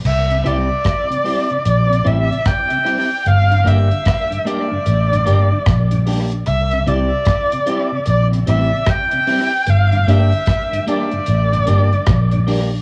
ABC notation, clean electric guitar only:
X:1
M:4/4
L:1/8
Q:"Swing 16ths" 1/4=75
K:Cmix
V:1 name="Clean electric guitar"
z [CEG] z [CEG] z [CEG] z [CEG] | z [B,DG] z [B,DG] z [B,DG] z [B,DG] | z [CEG] z [CEG] z [CEG] z [CEG] | z [B,DG] z [B,DG] z [B,DG] z [B,DG] |]